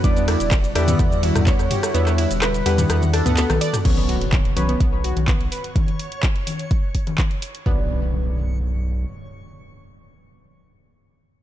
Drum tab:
CC |----------------|----------------|x---------------|----------------|
RD |--x---x---x---x-|--x---x---x---x-|----------------|----------------|
HH |xxoxxxoxx-oxxxox|xxoxxxoxx-oxxxox|xxoxxxoxx-oxxxox|xxoxxxoxx-oxxxox|
SH |xx-xxx-xxx-xxx-x|xx-xxx-xxx-xxx-x|----------------|----------------|
CP |----x-------x---|-x--x-------x---|----x-------x---|----x-------x---|
SD |--r-r-r-r--r-r-r|-r--r-r-r-r--r-r|----------------|----------------|
T2 |-------o---o--o-|-------o---o---o|----------------|----------------|
CG |-------o--o-----|-------o-o---o--|o-----o----o----|o-----o----o----|
BD |o---o---o---o---|----------------|o---o---o---o---|o---o---o-o-o---|

CC |----------------|----------------|
RD |----------------|----------------|
HH |----------------|----------------|
SH |----------------|----------------|
CP |----------------|----------------|
SD |----------------|----------------|
T2 |----------------|----------------|
CG |----------------|----------------|
BD |o---------------|----------------|